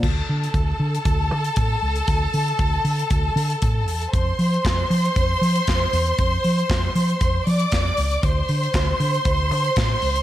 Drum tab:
CC |x---------------|----------------|----------------|----------------|
HH |---xx--xx--xx--x|x-oxx-oxx-oxx-ox|x-oxx-oxx-oxx-ox|x-oxx-oxx-oxx-ox|
CP |----------------|----------------|----x-------x---|----x-------x---|
SD |----------------|----------------|----o-------o---|----o-------o---|
BD |o---o---o---o---|o---o---o---o---|o---o---o---o---|o---o---o---o---|

CC |----------------|
HH |x-oxx-oxx-oxx-ox|
CP |----x-------x---|
SD |----o-------o---|
BD |o---o---o---o---|